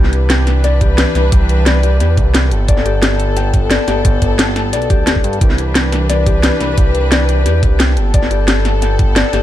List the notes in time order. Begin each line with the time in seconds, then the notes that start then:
Already playing: C2 E3 D4 G4 B4 D5 G5
0.04 snare
0.13 closed hi-hat
0.30 G5, snare, closed hi-hat
0.47 snare, closed hi-hat
0.64 D5, snare, closed hi-hat
0.81 G4, kick, closed hi-hat
0.98 G4, snare, closed hi-hat
1.15 C2, snare, closed hi-hat
1.32 C2 G5, kick, closed hi-hat
1.49 closed hi-hat
1.66 D5, snare, closed hi-hat
1.83 G4, closed hi-hat
2.00 E2 G4, snare, closed hi-hat
2.17 C2, kick, closed hi-hat
2.34 G5, snare, closed hi-hat
2.51 G1 B3 A4, closed hi-hat
2.68 G1 D5, kick, closed hi-hat
2.77 snare
2.85 G4, closed hi-hat
3.03 G4, snare, closed hi-hat
3.20 closed hi-hat
3.37 G5, snare, closed hi-hat
3.54 kick, closed hi-hat
3.71 D5, snare, closed hi-hat
3.88 G1 G4, snare, closed hi-hat
4.05 G1 G4, kick, closed hi-hat
4.22 kick, closed hi-hat
4.39 G5, snare, closed hi-hat
4.56 snare, closed hi-hat
4.73 B1 D5, snare, closed hi-hat
4.82 closed hi-hat
4.90 D1 G4, kick, closed hi-hat
5.07 G4, snare, closed hi-hat
5.16 kick
5.24 G2, closed hi-hat
5.33 closed hi-hat
5.41 C2 E3 D4 G4 B4, kick, closed hi-hat
5.50 snare
5.58 closed hi-hat
5.75 G5, snare, closed hi-hat
5.92 snare, closed hi-hat
6.09 D5, snare, closed hi-hat
6.26 G4, kick, closed hi-hat
6.43 G4, snare, closed hi-hat
6.60 C2, snare, closed hi-hat
6.78 C2 G5, kick, closed hi-hat
6.95 closed hi-hat
7.12 D5, snare, closed hi-hat
7.29 G4, closed hi-hat
7.46 E2 G4, snare, closed hi-hat
7.63 C2, kick, closed hi-hat
7.80 G5, snare, closed hi-hat
7.97 G1 B3 A4, closed hi-hat
8.14 G1 D5, kick, closed hi-hat
8.23 snare
8.31 G4, closed hi-hat
8.48 G4, snare, closed hi-hat
8.65 snare, closed hi-hat
8.82 G5, snare, closed hi-hat
8.99 kick, closed hi-hat
9.16 D5, snare, closed hi-hat
9.33 G1 G4, snare, closed hi-hat